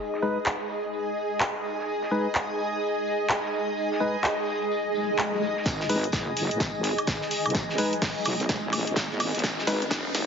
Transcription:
Already playing: G#4 D#5 G#5
0.14 snare
0.22 G#3 D#4 B4, tambourine
0.46 clap, open hi-hat
0.70 tambourine
0.84 closed hi-hat
0.93 tambourine
1.17 tambourine
1.40 clap
1.54 snare
1.64 tambourine
1.80 snare
1.88 tambourine
2.02 snare
2.11 G#3 D#4 B4, tambourine
2.35 clap, tambourine
2.59 tambourine
2.82 tambourine
3.06 tambourine
3.29 clap
3.44 snare
3.53 tambourine
3.77 tambourine
3.92 snare
4.00 G#3 D#4 B4, tambourine
4.24 clap, open hi-hat
4.48 tambourine
4.62 closed hi-hat
4.71 tambourine, swell
4.94 tambourine
5.18 clap, tambourine
5.33 snare
5.42 tambourine
5.57 snare
5.66 G#1, kick, snare, closed hi-hat, tambourine, riser, shaker
5.80 snare
5.89 G#3 D#4 B4, open hi-hat, tambourine, shaker
6.04 closed hi-hat, shaker
6.12 F#1, kick, snare, closed hi-hat, tambourine, shaker
6.37 open hi-hat, tambourine, shaker
6.51 G#1, closed hi-hat, shaker
6.60 kick, snare, closed hi-hat, tambourine, shaker
6.84 open hi-hat, tambourine, shaker
6.98 closed hi-hat, high woodblock, shaker
7.07 kick, snare, closed hi-hat, tambourine, shaker
7.21 snare
7.31 open hi-hat, tambourine, shaker
7.46 B1, closed hi-hat, high woodblock, shaker
7.50 closed hi-hat
7.55 kick, snare, closed hi-hat, tambourine, shaker
7.69 snare
7.78 G#3 D#4 B4, open hi-hat, tambourine, shaker
7.93 closed hi-hat, shaker
8.02 kick, snare, closed hi-hat, open hi-hat, shaker
8.25 B1, open hi-hat, tambourine, high woodblock, shaker
8.40 closed hi-hat, shaker
8.49 kick, snare, closed hi-hat, tambourine, shaker
8.64 A1
8.73 open hi-hat, tambourine, high woodblock, shaker
8.87 G#1, closed hi-hat, shaker
8.96 kick, snare, closed hi-hat, tambourine, shaker
9.11 G#1, snare
9.20 open hi-hat, tambourine, high woodblock, shaker
9.34 G#1, snare, closed hi-hat, shaker
9.39 closed hi-hat
9.44 G#1, kick, snare, closed hi-hat, tambourine, shaker
9.58 snare
9.67 G#3 D#4 B4, snare, open hi-hat, tambourine, shaker
9.82 closed hi-hat, shaker
9.91 F#1, kick, snare, closed hi-hat, tambourine, shaker
10.15 snare, open hi-hat, tambourine, shaker

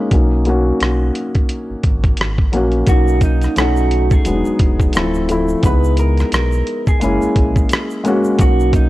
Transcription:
Already playing: G#3 A#3 C#4 D#4
0.11 B1 F#3 A#3 C#4 D#4, kick, closed hi-hat
0.45 F#3 A#3 C#4 F#4, closed hi-hat
0.81 B1, cross-stick, closed hi-hat
1.15 closed hi-hat
1.35 kick, closed hi-hat
1.49 closed hi-hat
1.70 G#1
1.83 G#1, kick, closed hi-hat
2.04 kick, closed hi-hat
2.17 G#1, closed hi-hat
2.21 cross-stick
2.38 kick
2.52 A#1 F#3 A#3 C#4 F#4, closed hi-hat
2.72 closed hi-hat
2.86 B1 F#3 A#3 C#4 F#4, kick, closed hi-hat, shaker
2.91 D#4
3.08 shaker
3.21 D#4, kick, closed hi-hat, shaker
3.41 cross-stick, closed hi-hat, shaker
3.56 B1 F#3 A3 C#4 D#4 F#4, cross-stick, closed hi-hat, shaker
3.76 shaker
3.91 closed hi-hat
4.11 G#4, kick, shaker
4.25 E1 F#3 G#3 B3 D4, closed hi-hat, shaker
4.35 D#4
4.45 E1, shaker
4.59 E1, kick, closed hi-hat
4.80 kick, shaker
4.93 D1 F3 A3 C4 A4, closed hi-hat, shaker
4.97 E4, cross-stick
5.14 shaker
5.28 F3 A3 C4 E4, closed hi-hat, shaker
5.48 shaker
5.62 C#2 G#3 B3 D#4 B4, kick, closed hi-hat, shaker
5.66 E4
5.84 shaker
5.97 A#4, closed hi-hat, shaker
6.17 cross-stick, closed hi-hat, shaker
6.32 B1 A#4, cross-stick, closed hi-hat, shaker
6.52 shaker
6.67 closed hi-hat
6.87 G#4, kick, shaker
7.00 F#1 G#3 A#3 C#4 E4, closed hi-hat, shaker
7.22 A#1, shaker
7.36 A#1, kick, closed hi-hat
7.56 kick, shaker
7.69 closed hi-hat, shaker
7.73 cross-stick
7.90 shaker
8.04 G#3 A#3 C#4 F#4, closed hi-hat, shaker
8.24 shaker
8.38 B1 F#3 A#3 C#4 D#4 F#4, kick, closed hi-hat, shaker
8.60 shaker
8.73 D#4, kick, closed hi-hat, shaker

